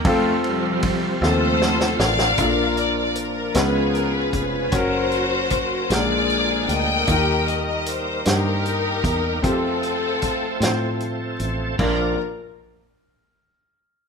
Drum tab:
CC |------------|------------|------------|------------|
RD |x-x-x-------|------------|------------|------------|
HH |------------|x-x-x-x-x-x-|x-x-x-x-x-x-|x-x-x-x-x-x-|
SD |------o-oooo|------o-----|------o-----|------o-----|
BD |o---o-------|o---------o-|o---o-------|o---------o-|

CC |------------|x-----------|
RD |------------|------------|
HH |x-x-x-x-x-x-|------------|
SD |------o-----|------------|
BD |o---o-------|o-----------|